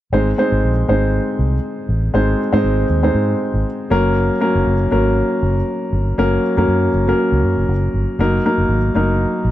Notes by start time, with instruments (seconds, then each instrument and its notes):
0.12 fingered electric bass G#1, grand piano G#3 C4 D#4 C5
0.38 grand piano G#3 C4 D#4 C5
0.52 fingered electric bass G#1
0.64 fingered electric bass A#1
0.88 fingered electric bass G#1, grand piano G#3 C4 D#4 C5
1.39 fingered electric bass C2
1.89 fingered electric bass A1
2.14 fingered electric bass G#1, grand piano G#3 C4 D#4 C5
2.52 fingered electric bass G#2, grand piano G#3 C4 D#4 C5
2.64 fingered electric bass G#1
2.90 fingered electric bass D#2
3.03 grand piano G#3 C4 D#4 C5
3.14 fingered electric bass G#2
3.54 fingered electric bass G#1
3.90 fingered electric bass F#1, grand piano F#3 A#3 C#4 A#4
4.40 grand piano F#3 A#3 C#4 A#4
4.55 fingered electric bass F#1
4.67 fingered electric bass F#1
4.91 fingered electric bass G#1, grand piano F#3 A#3 C#4 A#4
5.43 fingered electric bass F#1
5.93 fingered electric bass G1
6.18 fingered electric bass F#1, grand piano F#3 A#3 C#4 A#4
6.57 fingered electric bass F#2, grand piano F#3 A#3 C#4 A#4
6.68 fingered electric bass F#2
6.93 fingered electric bass F#1
7.07 grand piano F#3 A#3 C#4 A#4
7.32 fingered electric bass C#2
7.44 fingered electric bass F#2
7.57 fingered electric bass F#1
7.69 fingered electric bass F#1
7.94 fingered electric bass G1
8.19 fingered electric bass F#1, grand piano F#3 A#3 D#4 A#4
8.45 grand piano F#3 A#3 D#4 A#4
8.58 fingered electric bass F#1
8.69 fingered electric bass G#1
8.94 fingered electric bass F#1, grand piano F#3 A#3 D#4 A#4
9.45 fingered electric bass A#1